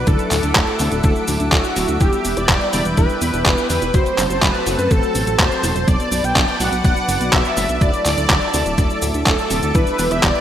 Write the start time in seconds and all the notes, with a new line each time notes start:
Already playing: D6
0.07 D2 D3 F#3 A3 D4 E4 A4 E5 F#5, kick, closed hi-hat, cabasa
0.19 closed hi-hat, cabasa
0.31 D2 A2 A4, clap, open hi-hat, cabasa
0.43 D2 D3, closed hi-hat, cabasa
0.55 D2 F#3, kick, clap, closed hi-hat, cabasa
0.67 closed hi-hat
0.79 D2 C3 F#3 A3 D4 E4, open hi-hat, cabasa
0.92 D1 D3, closed hi-hat, cabasa
1.04 D2 D3, kick, closed hi-hat, cabasa
1.16 cabasa
1.28 D2 A2, open hi-hat, cabasa
1.40 D2 D3, closed hi-hat, cabasa
1.52 D2 F#3 F#4, kick, clap, closed hi-hat, cabasa
1.64 cabasa
1.76 D1 C3, open hi-hat, cabasa
1.88 D2 D3, closed hi-hat, cabasa
2.00 E1 E3 G3 B3 D4 E4 G4 B4 G5, kick, closed hi-hat, cabasa
2.13 closed hi-hat, cabasa
2.25 E1 B2, open hi-hat, cabasa
2.37 E1 E3 D5, closed hi-hat, cabasa
2.49 E1 G3, kick, clap, closed hi-hat, cabasa
2.61 closed hi-hat
2.73 E1 D3 G3 B3 D4 E4 D5, open hi-hat, cabasa
2.85 E1 E3, closed hi-hat, cabasa
2.97 E1 E3 B4, kick, closed hi-hat, cabasa
3.09 cabasa
3.22 E2 B2, open hi-hat, cabasa
3.34 E1 E3, closed hi-hat, cabasa
3.46 E1 G3, kick, clap, closed hi-hat, cabasa
3.58 cabasa
3.70 E2 D3 B4, open hi-hat, cabasa
3.82 E1 E3, closed hi-hat, cabasa
3.94 F#1 F#3 A3 C4 F#4 A4 C5 A5, kick, closed hi-hat, cabasa
4.06 closed hi-hat, cabasa
4.18 F#1 C3, clap, open hi-hat, cabasa
4.30 F#1 F#3, closed hi-hat, cabasa
4.42 F#1 A3 B4, kick, clap, closed hi-hat, cabasa
4.55 closed hi-hat
4.66 F#1 E3 F#3 A3 C4 F#4, open hi-hat, cabasa
4.79 F#2 F#3, closed hi-hat, cabasa
4.91 A1 F#3 A4, kick, closed hi-hat, cabasa
5.03 cabasa
5.15 A1 C3, open hi-hat, cabasa
5.27 A1 F#3, closed hi-hat, cabasa
5.39 E1 A3 C5, kick, clap, closed hi-hat, cabasa
5.52 cabasa
5.63 E1 E3, open hi-hat, cabasa
5.75 E1 F#3, closed hi-hat, cabasa
5.87 B1 B2 F#3 B3 D4 B4 D5 D6, kick, closed hi-hat, cabasa
6.00 closed hi-hat, cabasa
6.11 B1 F#2, open hi-hat, cabasa
6.24 B1 B2 G5, closed hi-hat, cabasa
6.36 B1 D3, kick, clap, closed hi-hat, cabasa
6.48 closed hi-hat
6.60 B1 A2 F#3 B3 D4 F#4 F#5, open hi-hat, cabasa
6.72 B1 B2, closed hi-hat, cabasa
6.84 B1 B2 F#5, kick, closed hi-hat, cabasa
6.97 cabasa
7.08 F#1 F#2, open hi-hat, cabasa
7.20 B1 B2, closed hi-hat, cabasa
7.33 B1 D3 E5, kick, clap, closed hi-hat, cabasa
7.45 cabasa
7.57 F#1 A2, open hi-hat, cabasa
7.69 B1 B2, closed hi-hat, cabasa
7.81 D2 D3 F#3 A3 D4 E4 A4 D5 E5 D6, kick, closed hi-hat, cabasa
7.94 closed hi-hat, cabasa
8.05 D2 A2 D5, clap, open hi-hat, cabasa
8.17 D2 D3, closed hi-hat, cabasa
8.30 D2 F#3, kick, clap, closed hi-hat, cabasa
8.42 closed hi-hat
8.54 D2 C3 F#3 A3 D4 E4, open hi-hat, cabasa
8.66 D1 D3, closed hi-hat, cabasa
8.78 D2 D3, kick, closed hi-hat, cabasa
8.90 cabasa
9.02 D2 A2, open hi-hat, cabasa
9.14 D2 D3, closed hi-hat, cabasa
9.26 D2 F#3 A4, kick, clap, closed hi-hat, cabasa
9.38 cabasa
9.50 D1 C3, open hi-hat, cabasa
9.63 D2 D3, closed hi-hat, cabasa
9.75 E1 E3 G3 B3 D4 E4 B4 G5, kick, closed hi-hat, cabasa
9.87 closed hi-hat, cabasa
9.99 E1 B2, open hi-hat, cabasa
10.11 E1 E3 E5, closed hi-hat, cabasa
10.23 E1 G3 D5, kick, clap, closed hi-hat, cabasa
10.35 closed hi-hat